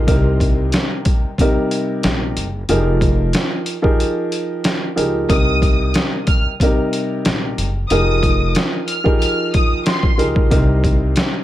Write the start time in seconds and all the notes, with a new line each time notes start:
0.07 C2 C3 G3 D#4 A#4, kick, closed hi-hat
0.40 kick, closed hi-hat
0.72 snare, closed hi-hat
1.05 kick, closed hi-hat
1.38 C3 G3 D#4 A#4, kick, closed hi-hat
1.71 closed hi-hat
2.03 A#1, snare, closed hi-hat
2.36 F#1, closed hi-hat
2.69 F1 F3 D#4 G4 G#4 A#4, closed hi-hat
3.01 kick, closed hi-hat
3.33 snare, closed hi-hat
3.66 closed hi-hat
3.82 F3 D#4 G4 G#4 A#4, kick
4.00 closed hi-hat
4.32 closed hi-hat
4.64 snare, closed hi-hat
4.96 C#2 F3 D#4 G4 G#4 A#4, closed hi-hat
5.29 C2 C3 G3 D#4 A#4 D#6, kick, closed hi-hat
5.62 kick, closed hi-hat
5.94 snare, closed hi-hat
6.27 F6, kick, closed hi-hat
6.60 C3 G3 D#4 A#4, kick, closed hi-hat
6.93 closed hi-hat
7.25 A#1, snare, closed hi-hat
7.58 F#1, closed hi-hat
7.90 F1 F3 D#4 G4 G#4 A#4 D#6, closed hi-hat
8.23 kick, closed hi-hat
8.55 snare, closed hi-hat
8.88 F6, closed hi-hat
9.04 F3 D#4 G4 G#4 A#4, kick
9.20 F6, closed hi-hat
9.54 D#6, kick, closed hi-hat
9.86 C6, snare, closed hi-hat
10.03 kick
10.17 C#2 F3 D#4 G4 G#4 A#4, closed hi-hat
10.36 kick
10.50 C2 C3 G3 D#4 A#4, kick, closed hi-hat
10.84 kick, closed hi-hat
11.16 snare, closed hi-hat